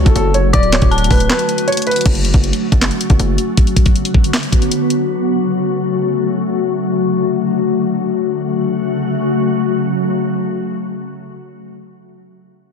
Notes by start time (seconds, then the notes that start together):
Already playing: C#3 F#3 A3 F#4
0.05 F#1 A4, kick, closed hi-hat
0.16 F#1 A4, closed hi-hat
0.34 C#5, closed hi-hat
0.53 D1 D3 D5 D6, kick, closed hi-hat
0.63 closed hi-hat
0.72 C#5, snare, clap, closed hi-hat
0.82 D1, kick, closed hi-hat
0.91 A5, closed hi-hat
0.98 closed hi-hat
1.04 closed hi-hat
1.10 D1 B4, kick, open hi-hat
1.20 closed hi-hat
1.29 B4, snare, clap, closed hi-hat
1.39 closed hi-hat
1.49 closed hi-hat
1.58 closed hi-hat
1.68 C#5, closed hi-hat
1.72 closed hi-hat
1.77 closed hi-hat
1.82 closed hi-hat
1.87 B4, closed hi-hat
1.91 closed hi-hat
1.96 closed hi-hat
2.01 closed hi-hat
2.06 F#1 C#3 F#3 A3 F#4, kick, closed hi-hat, crash
2.15 closed hi-hat
2.25 closed hi-hat
2.34 F#1, kick, closed hi-hat
2.44 closed hi-hat
2.53 closed hi-hat
2.72 F#1, kick, closed hi-hat
2.81 snare, clap, closed hi-hat
2.91 closed hi-hat
3.01 closed hi-hat
3.10 F#1, kick, closed hi-hat
3.19 F#1, closed hi-hat
3.38 closed hi-hat
3.57 D3 B3, kick, closed hi-hat
3.67 closed hi-hat
3.76 kick, closed hi-hat
3.86 kick, closed hi-hat
3.96 closed hi-hat
4.05 closed hi-hat
4.14 kick
4.24 closed hi-hat
4.33 snare, clap, closed hi-hat
4.43 closed hi-hat
4.52 kick, closed hi-hat
4.62 closed hi-hat
4.71 closed hi-hat
4.90 closed hi-hat
5.09 C#3 A3
6.61 D3
8.13 C#3 F#3 A3 F#4